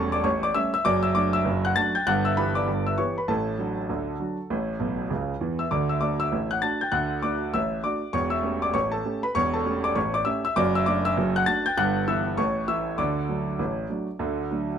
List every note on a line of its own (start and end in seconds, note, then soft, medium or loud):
0.00 0.27 E1 medium
0.00 0.27 E2 medium
0.00 0.10 G3 medium
0.00 0.11 A3 soft
0.00 0.11 C#4 medium
0.00 0.11 A4 medium
0.00 0.12 A5 medium
0.00 0.24 C#6 loud
0.12 0.24 D5 medium
0.12 0.25 D6 medium
0.24 0.50 A1 medium
0.24 0.50 A2 medium
0.24 0.42 C#5 medium
0.24 0.42 C#6 medium
0.43 0.55 D5 medium
0.43 0.55 D6 medium
0.54 0.71 G3 soft
0.54 0.72 A3 soft
0.54 0.72 C#4 medium
0.54 0.72 E5 medium
0.54 0.72 E6 loud
0.74 0.85 E5 medium
0.74 0.86 E6 medium
0.85 1.11 F#1 medium
0.85 1.11 F#2 medium
0.85 1.02 D5 medium
0.85 1.03 D6 loud
1.03 1.15 E5 medium
1.03 1.15 E6 medium
1.15 1.32 F#3 soft
1.15 1.32 A3 medium
1.15 1.32 D4 medium
1.15 1.33 D5 medium
1.15 1.33 D6 loud
1.33 1.62 E5 medium
1.33 1.64 E6 loud
1.45 1.71 F#1 medium
1.45 1.71 F#2 medium
1.65 1.76 F#5 medium
1.65 1.76 F#6 medium
1.76 1.93 F#3 medium
1.76 1.93 A3 medium
1.76 1.93 D4 medium
1.76 1.93 A5 medium
1.76 1.94 A6 loud
1.95 2.06 G5 medium
1.95 2.07 G6 medium
2.07 2.32 G1 medium
2.07 2.33 G2 loud
2.07 2.24 F#5 medium
2.07 2.25 F#6 loud
2.25 2.37 E5 medium
2.25 2.37 E6 medium
2.37 2.54 E3 soft
2.37 2.54 B3 medium
2.37 2.54 G4 medium
2.37 2.55 B4 medium
2.37 2.55 B5 medium
2.55 2.84 D5 medium
2.55 2.85 D6 medium
2.67 2.93 G1 medium
2.67 2.93 G2 medium
2.87 2.98 E5 medium
2.87 2.98 E6 medium
2.98 3.15 E3 soft
2.98 3.15 B3 soft
2.98 3.15 G4 soft
2.98 3.15 C#5 medium
2.98 3.16 C#6 medium
3.18 3.29 B4 soft
3.18 3.29 B5 medium
3.28 3.54 A1 medium
3.28 3.54 A2 medium
3.28 5.07 A4 medium
3.28 5.11 A5 medium
3.58 3.75 F#3 soft
3.58 3.75 D4 soft
3.58 3.76 F#4 soft
3.89 4.15 D2 medium
3.89 4.15 D3 medium
4.20 4.36 F#3 soft
4.20 4.36 D4 soft
4.20 4.37 F#4 soft
4.50 4.76 A1 medium
4.50 4.76 A2 medium
4.80 5.03 B1 medium
4.80 5.03 B2 medium
5.10 5.33 C#2 medium
5.10 5.33 C#3 medium
5.41 5.64 E2 medium
5.41 5.64 E3 medium
5.59 5.71 E5 medium
5.59 5.71 E6 medium
5.71 5.97 D2 medium
5.71 5.97 D3 medium
5.71 5.89 D5 medium
5.71 5.89 D6 medium
5.89 6.01 E5 medium
5.89 6.02 E6 medium
6.01 6.18 A3 soft
6.01 6.18 D4 soft
6.01 6.18 F#4 soft
6.01 6.19 D5 medium
6.01 6.19 D6 medium
6.20 6.49 E5 medium
6.20 6.50 E6 medium
6.32 6.58 A1 medium
6.32 6.58 A2 medium
6.51 6.63 F#5 medium
6.51 6.63 F#6 medium
6.62 6.79 A3 soft
6.62 6.79 D4 soft
6.62 6.79 F#4 soft
6.62 6.80 A5 medium
6.62 6.80 A6 medium
6.81 6.93 G5 medium
6.81 6.93 G6 medium
6.92 7.18 D2 medium
6.92 7.18 D3 medium
6.92 7.21 F#5 medium
6.92 7.22 F#6 medium
7.22 7.39 A3 soft
7.22 7.40 D4 soft
7.22 7.40 F#4 soft
7.22 7.52 D5 medium
7.22 7.53 D6 medium
7.54 7.80 A1 medium
7.54 7.80 A2 medium
7.54 7.82 E5 medium
7.54 7.84 E6 medium
7.84 8.01 A3 soft
7.84 8.01 D4 soft
7.84 8.01 F#4 soft
7.84 8.12 D5 medium
7.84 8.14 D6 medium
8.13 8.39 E1 medium
8.13 8.40 E2 medium
8.13 8.31 C#5 medium
8.13 8.32 C#6 loud
8.30 8.60 E5 medium
8.30 8.62 E6 medium
8.43 8.60 A3 soft
8.43 8.60 C#4 soft
8.43 8.61 G4 soft
8.62 8.74 D5 medium
8.62 8.74 D6 medium
8.74 9.00 A1 medium
8.74 9.00 A2 medium
8.74 8.92 C#5 medium
8.74 8.92 C#6 medium
8.92 9.21 A4 medium
8.92 9.22 A5 medium
9.05 9.22 A3 soft
9.05 9.22 C#4 soft
9.05 9.22 G4 soft
9.23 9.35 B4 medium
9.23 9.35 B5 medium
9.35 9.61 E1 medium
9.35 9.61 E2 medium
9.35 9.52 C#5 medium
9.35 9.53 C#6 loud
9.54 9.82 A4 medium
9.54 9.84 A5 medium
9.66 9.82 A3 soft
9.66 9.83 C#4 medium
9.66 9.83 G4 medium
9.84 9.96 D5 medium
9.84 9.96 D6 medium
9.95 10.21 A1 medium
9.95 10.21 A2 medium
9.95 10.13 C#5 medium
9.95 10.14 C#6 medium
10.14 10.26 D5 medium
10.14 10.26 D6 medium
10.25 10.42 A3 medium
10.25 10.42 C#4 soft
10.25 10.43 G4 medium
10.25 10.43 E5 medium
10.25 10.43 E6 medium
10.45 10.56 E5 medium
10.45 10.56 E6 medium
10.56 10.82 F#1 medium
10.56 10.82 F#2 loud
10.56 10.74 D5 medium
10.56 10.74 D6 loud
10.75 10.87 E5 medium
10.75 10.87 E6 medium
10.86 11.03 A3 soft
10.86 11.03 D4 soft
10.86 11.04 F#4 medium
10.86 11.04 D5 medium
10.86 11.04 D6 loud
11.05 11.33 E5 medium
11.05 11.35 E6 loud
11.17 11.42 F#1 medium
11.17 11.42 F#2 medium
11.36 11.47 F#5 medium
11.36 11.47 F#6 loud
11.46 11.63 A3 soft
11.46 11.63 D4 medium
11.46 11.64 F#4 medium
11.46 11.64 A5 medium
11.46 11.64 A6 loud
11.66 11.77 G5 medium
11.66 11.77 G6 loud
11.77 12.03 G1 medium
11.77 12.03 G2 medium
11.77 12.06 F#5 medium
11.77 12.07 F#6 loud
12.08 12.24 E3 medium
12.08 12.24 B3 medium
12.08 12.25 E4 medium
12.08 12.36 E5 medium
12.08 12.38 E6 medium
12.37 12.64 A1 medium
12.37 12.64 A2 medium
12.37 12.66 C#5 medium
12.37 12.68 C#6 medium
12.68 12.85 E3 soft
12.68 12.85 A3 soft
12.68 12.85 E4 soft
12.68 12.96 E5 medium
12.68 12.98 E6 medium
12.98 13.24 D2 medium
12.98 13.24 D3 medium
12.98 14.77 D5 medium
12.98 14.79 D6 medium
13.29 13.45 F#3 soft
13.29 13.46 A3 soft
13.29 13.46 D4 soft
13.59 13.85 A1 medium
13.59 13.85 A2 medium
13.90 14.06 F#3 soft
13.90 14.06 A3 soft
13.90 14.07 D4 soft
14.19 14.45 D2 medium
14.19 14.45 D3 medium
14.51 14.67 F#3 soft
14.51 14.68 A3 soft
14.51 14.68 D4 soft